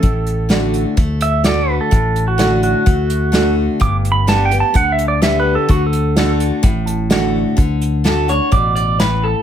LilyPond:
<<
  \new Staff \with { instrumentName = "Pedal steel guitar" } { \time 4/4 \key d \major \tempo 4 = 127 a'2 r8 e''8 d''8 b'16 a'16~ | a'8. fis'8. fis'2 r8 | \tuplet 3/2 { d'''8 r8 b''8 a''8 g''8 a''8 fis''8 e''8 d''8 e''8 b'8 a'8 } | \tuplet 3/2 { fis'8 a'4~ } a'16 r2 r8. |
r1 | }
  \new Staff \with { instrumentName = "Clean electric guitar" } { \time 4/4 \key d \major r1 | r1 | r1 | r1 |
r4 a'8 cis''8 d''8 d''8 b'8 a'8 | }
  \new Staff \with { instrumentName = "Upright piano" } { \time 4/4 \key d \major << { r1 | r1 | r1 | r2 r8 a''8 fis''4 |
r1 | } \\ { r4 <fis' a' d''>8 r4. <fis' a' d''>8 r8 | r4 <fis' a' d''>8 r4. <fis' a' d''>8 r8 | r4 <g' b' d''>8 r4. <g' b' d''>8 r8 | r4 <fis' a' d''>8 r4. <fis' a' d''>8 r8 |
r1 | } >> }
  \new Staff \with { instrumentName = "Steel-string acoustic guitar" } { \time 4/4 \key d \major << { r4 <d a d' fis'>4 r4 <d a d' fis'>4 | r4 <d a d' fis'>4 r4 <d a d' fis'>4 | r4 <d g b g'>8 <b g'>8 r4 <d g b g'>4 | r4 <d a d' fis'>4 r4 <d a d' fis'>4 |
r4 <d a d' fis'>8 <d' fis'>8 r2 | } \\ { a,2 a2 | a,2 a2 | g,2 d2 | d2 a,2 |
d2 b,4 a,4 | } >> }
  \new Staff \with { instrumentName = "Fingered electric bass" } { \clef bass \time 4/4 \key d \major a,,2 d,2 | a,,2 d,2 | g,,2 d,2 | d,2 a,,2 |
d,2 a,,2 | }
  \new DrumStaff \with { instrumentName = "Drums" } \drummode { \time 4/4 <hh bd>8 hh8 <hh sn>8 hh8 <hh bd>8 hh8 <hh sn>4 | <hh bd>8 hh8 <hh sn>8 hh8 <hh bd>8 hh8 <hh sn>4 | <hh bd>8 hh8 <hh sn>8 hh8 <hh bd>8 hh8 <hh sn>4 | <hh bd>8 hh8 <hh sn>8 hh8 <hh bd>8 hh8 <hh sn>4 |
<hh bd>8 hh8 <hh sn>8 hh8 <hh bd>8 hh8 <hh sn>4 | }
>>